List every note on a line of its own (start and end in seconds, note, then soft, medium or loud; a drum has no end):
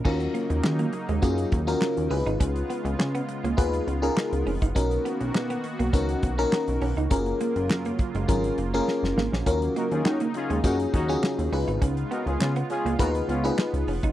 0.05 0.28 D#2 loud
0.05 4.72 C#3 medium
0.05 2.09 F#3 medium
0.05 2.09 A#3 medium
0.05 0.17 C#4 medium
0.05 0.83 C#4 medium
0.05 2.09 D#4 loud
0.05 0.83 F4 medium
0.05 0.83 F#4 medium
0.05 0.84 A#4 medium
0.05 kick loud
0.05 crash medium
0.20 closed hi-hat soft
0.34 0.47 A#3 medium
0.34 closed hi-hat medium
0.50 0.61 D#2 loud
0.50 muted clean electric guitar stroke soft
0.50 closed hi-hat soft
0.64 0.86 D#3 loud
0.64 snare loud
0.64 clap loud
0.79 0.90 A#3 medium
0.79 closed hi-hat soft
0.93 muted clean electric guitar stroke medium
0.93 closed hi-hat medium
1.09 1.20 D#2 loud
1.09 1.20 G#3 medium
1.09 closed hi-hat soft
1.22 1.45 F#2 loud
1.22 1.35 A#3 medium
1.22 1.52 C#4 medium
1.22 1.52 F4 medium
1.22 1.52 F#4 medium
1.22 1.52 G#4 loud
1.22 kick loud
1.22 closed hi-hat medium
1.38 closed hi-hat medium
1.52 1.75 D#2 medium
1.52 muted clean electric guitar stroke soft
1.52 kick loud
1.52 closed hi-hat medium
1.67 2.11 C#4 loud
1.67 1.79 C#4 medium
1.67 2.11 F4 loud
1.67 2.11 F#4 medium
1.67 2.11 A#4 loud
1.67 closed hi-hat medium
1.82 muted clean electric guitar stroke medium
1.82 snare loud
1.82 clap loud
1.97 2.08 D#2 medium
1.97 closed hi-hat medium
2.10 2.23 C#2 loud
2.10 4.73 G#3 medium
2.10 7.07 B3 medium
2.10 2.23 C#4 medium
2.10 3.05 D#4 medium
2.10 2.18 E4 medium
2.10 4.73 F4 loud
2.10 3.05 G#4 medium
2.10 3.05 B4 loud
2.10 open hi-hat medium
2.17 3.08 F4 medium
2.26 2.37 G#1 loud
2.26 2.37 D#4 medium
2.26 closed hi-hat medium
2.40 2.63 C#2 loud
2.40 2.52 C#4 loud
2.40 kick medium
2.40 closed hi-hat loud
2.56 closed hi-hat soft
2.70 2.82 B3 medium
2.70 closed hi-hat medium
2.85 2.96 C#2 loud
2.85 muted clean electric guitar stroke soft
2.85 closed hi-hat soft
2.99 3.21 C#3 loud
2.99 snare loud
2.99 clap loud
3.15 3.26 B3 medium
3.15 closed hi-hat medium
3.29 muted clean electric guitar stroke soft
3.29 closed hi-hat medium
3.44 3.55 C#2 medium
3.44 3.55 A#3 medium
3.44 closed hi-hat soft
3.57 3.80 D#2 medium
3.57 3.70 B3 medium
3.57 3.87 D#4 medium
3.57 3.87 F4 medium
3.57 3.87 G#4 medium
3.57 3.87 B4 loud
3.57 kick loud
3.57 closed hi-hat loud
3.73 closed hi-hat medium
3.87 4.10 C#2 medium
3.87 muted clean electric guitar stroke soft
3.87 closed hi-hat medium
4.02 4.14 C#4 medium
4.02 4.51 D#4 medium
4.02 4.51 F4 medium
4.02 4.51 G#4 loud
4.02 4.51 A#4 loud
4.02 closed hi-hat soft
4.17 muted clean electric guitar stroke soft
4.17 snare loud
4.17 clap medium
4.33 4.43 C#2 medium
4.33 closed hi-hat medium
4.46 4.58 F1 medium
4.46 4.59 C#4 medium
4.46 open hi-hat medium
4.62 4.72 F#1 loud
4.62 4.73 D#4 medium
4.62 kick medium
4.62 closed hi-hat medium
4.75 4.98 B1 loud
4.75 7.09 D#3 medium
4.75 11.48 A#3 medium
4.75 5.54 C#4 medium
4.75 4.88 C#4 medium
4.75 5.54 D#4 medium
4.75 5.54 F#4 medium
4.75 7.09 F#4 loud
4.75 5.54 A#4 loud
4.75 kick medium
4.75 closed hi-hat loud
4.91 closed hi-hat soft
5.05 5.17 B3 medium
5.05 closed hi-hat medium
5.21 5.31 B1 loud
5.21 muted clean electric guitar stroke soft
5.21 closed hi-hat soft
5.35 5.57 B2 loud
5.35 snare loud
5.35 clap medium
5.50 5.61 B3 medium
5.50 closed hi-hat soft
5.64 muted clean electric guitar stroke soft
5.64 closed hi-hat medium
5.79 5.90 B1 loud
5.79 5.90 A#3 medium
5.79 closed hi-hat medium
5.93 6.16 C#2 medium
5.93 6.06 B3 medium
5.93 6.22 C#4 medium
5.93 6.22 D#4 medium
5.93 6.23 F#4 medium
5.93 6.23 A#4 loud
5.93 kick loud
5.93 closed hi-hat loud
6.09 closed hi-hat medium
6.23 6.45 B1 medium
6.23 muted clean electric guitar stroke soft
6.23 kick loud
6.23 closed hi-hat medium
6.38 6.86 C#4 medium
6.38 6.49 C#4 medium
6.38 6.86 D#4 loud
6.38 6.86 F#4 medium
6.38 6.87 A#4 loud
6.38 closed hi-hat medium
6.52 muted clean electric guitar stroke soft
6.52 snare loud
6.52 clap medium
6.68 6.78 B1 medium
6.68 closed hi-hat medium
6.82 6.93 B1 medium
6.82 6.94 C#4 medium
6.82 open hi-hat medium
6.97 7.08 C#2 medium
6.97 7.08 D#4 medium
6.97 closed hi-hat medium
7.10 7.33 F#1 loud
7.10 9.44 C#3 medium
7.10 9.44 F#3 medium
7.10 7.89 C#4 medium
7.10 7.23 C#4 medium
7.10 7.89 F4 medium
7.10 9.44 F4 loud
7.10 7.89 G#4 medium
7.10 7.89 A#4 loud
7.10 kick loud
7.10 closed hi-hat loud
7.26 closed hi-hat soft
7.41 7.53 A#3 medium
7.41 closed hi-hat medium
7.56 7.71 F#1 loud
7.56 muted clean electric guitar stroke soft
7.56 closed hi-hat soft
7.69 7.92 F#2 loud
7.69 snare loud
7.69 clap medium
7.85 7.97 A#3 medium
7.85 closed hi-hat medium
7.99 muted clean electric guitar stroke soft
7.99 kick loud
7.99 closed hi-hat medium
8.15 8.25 F#1 medium
8.15 8.26 G#3 medium
8.15 closed hi-hat soft
8.28 8.51 G#1 loud
8.28 8.41 F#3 medium
8.28 8.58 C#4 medium
8.28 8.58 F4 medium
8.28 8.58 G#4 medium
8.28 8.58 A#4 loud
8.28 kick loud
8.28 closed hi-hat loud
8.44 closed hi-hat medium
8.58 8.81 F#1 medium
8.58 muted clean electric guitar stroke soft
8.58 closed hi-hat medium
8.74 8.85 A#3 medium
8.74 9.22 C#4 loud
8.74 9.22 F4 medium
8.74 9.22 G#4 loud
8.74 9.22 A#4 loud
8.74 closed hi-hat medium
8.88 muted clean electric guitar stroke soft
8.88 snare medium
9.03 9.13 F#1 medium
9.03 snare medium
9.17 9.29 G#1 medium
9.17 9.30 A#3 medium
9.17 snare loud
9.32 9.43 A#1 medium
9.32 9.44 C#4 medium
9.32 snare medium
9.46 9.69 D#2 loud
9.46 14.12 C#3 medium
9.46 11.50 F#3 medium
9.46 10.25 C#4 medium
9.46 9.59 C#4 medium
9.46 11.50 D#4 loud
9.46 10.25 F4 medium
9.46 10.25 F#4 medium
9.46 10.25 A#4 loud
9.46 kick medium
9.46 closed hi-hat loud
9.62 closed hi-hat soft
9.76 9.88 A#3 medium
9.76 9.88 D#4 medium
9.76 9.88 F#4 medium
9.76 9.88 A#4 medium
9.76 closed hi-hat medium
9.91 10.02 D#2 loud
9.91 10.03 C#4 medium
9.91 10.03 F4 medium
9.91 10.03 G#4 medium
9.91 muted clean electric guitar stroke soft
9.91 closed hi-hat soft
10.05 10.28 D#3 loud
10.05 10.18 C#4 medium
10.05 10.18 D#4 medium
10.05 10.18 F#4 medium
10.05 snare loud
10.05 clap loud
10.20 10.32 A#3 medium
10.20 closed hi-hat medium
10.34 10.59 C#4 loud
10.34 10.59 F4 loud
10.34 10.59 G#4 loud
10.34 muted clean electric guitar stroke soft
10.34 closed hi-hat medium
10.50 10.61 D#2 loud
10.50 10.61 G#3 medium
10.50 closed hi-hat soft
10.64 10.86 F#2 medium
10.64 10.76 A#3 medium
10.64 10.93 C#4 loud
10.64 10.77 D#4 loud
10.64 10.93 F4 medium
10.64 10.93 F#4 medium
10.64 10.77 F#4 loud
10.64 10.93 G#4 loud
10.64 10.77 A#4 loud
10.64 kick loud
10.64 closed hi-hat loud
10.80 closed hi-hat medium
10.93 11.16 D#2 medium
10.93 11.17 C#4 loud
10.93 11.17 D#4 loud
10.93 11.17 F#4 loud
10.93 muted clean electric guitar stroke soft
10.93 kick loud
10.93 closed hi-hat medium
11.08 11.52 C#4 loud
11.08 11.20 C#4 medium
11.08 11.52 F4 medium
11.08 11.52 F#4 medium
11.08 11.52 G#4 loud
11.08 closed hi-hat medium
11.23 muted clean electric guitar stroke soft
11.23 snare loud
11.23 clap medium
11.38 11.49 D#2 medium
11.38 closed hi-hat medium
11.52 11.64 C#2 loud
11.52 14.12 G#3 medium
11.52 14.12 B3 medium
11.52 11.65 C#4 medium
11.52 12.47 D#4 medium
11.52 14.12 F4 loud
11.52 12.47 F4 medium
11.52 12.47 G#4 medium
11.52 12.47 B4 medium
11.52 open hi-hat medium
11.68 11.78 G#1 medium
11.68 11.79 D#4 medium
11.68 closed hi-hat medium
11.82 12.04 C#2 loud
11.82 11.94 C#4 medium
11.82 kick medium
11.82 closed hi-hat loud
11.97 closed hi-hat soft
12.11 12.23 B3 medium
12.11 12.24 D#4 medium
12.11 12.24 F#4 medium
12.11 12.24 A#4 medium
12.11 closed hi-hat medium
12.26 12.37 C#2 loud
12.26 12.38 C#4 medium
12.26 12.38 F4 medium
12.26 12.38 G#4 medium
12.26 muted clean electric guitar stroke soft
12.26 closed hi-hat soft
12.40 12.63 C#3 loud
12.40 12.53 B3 medium
12.40 12.53 C#4 medium
12.40 12.53 F4 loud
12.40 snare loud
12.40 clap loud
12.56 12.67 B3 medium
12.56 closed hi-hat medium
12.70 12.93 C#4 loud
12.70 12.94 F4 medium
12.70 12.93 G#4 loud
12.70 muted clean electric guitar stroke medium
12.70 closed hi-hat medium
12.85 12.96 C#2 medium
12.85 12.96 A#3 medium
12.85 closed hi-hat medium
12.99 13.22 D#2 loud
12.99 13.12 B3 loud
12.99 13.28 D#4 loud
12.99 13.12 D#4 medium
12.99 13.28 F4 medium
12.99 13.12 F#4 medium
12.99 13.29 G#4 medium
12.99 13.12 A#4 loud
12.99 13.29 B4 loud
12.99 kick loud
12.99 closed hi-hat loud
13.15 closed hi-hat medium
13.29 13.51 C#2 medium
13.29 13.52 B3 medium
13.29 13.52 C#4 loud
13.29 13.52 F4 loud
13.29 muted clean electric guitar stroke soft
13.29 closed hi-hat medium
13.44 13.56 C#4 medium
13.44 13.92 D#4 loud
13.44 13.92 F4 medium
13.44 13.92 G#4 medium
13.44 13.92 B4 loud
13.44 closed hi-hat medium
13.59 muted clean electric guitar stroke soft
13.59 snare loud
13.59 clap medium
13.73 13.84 C#2 medium
13.73 closed hi-hat medium
13.87 13.99 F1 medium
13.87 14.00 C#4 medium
13.87 open hi-hat medium
14.03 14.12 F#1 medium
14.03 14.12 D#4 medium
14.03 kick medium
14.03 closed hi-hat medium